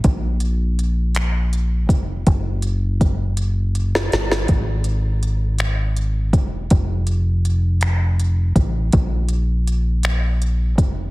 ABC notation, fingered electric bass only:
X:1
M:6/8
L:1/8
Q:3/8=54
K:A#phr
V:1 name="Fingered electric bass" clef=bass
A,,,4- A,,, E,,, | F,,,4- F,,, =G,,, | G,,,4- G,,, =E,,, | =F,,,4- F,,, =A,,, |
A,,,4- A,,, E,,, |]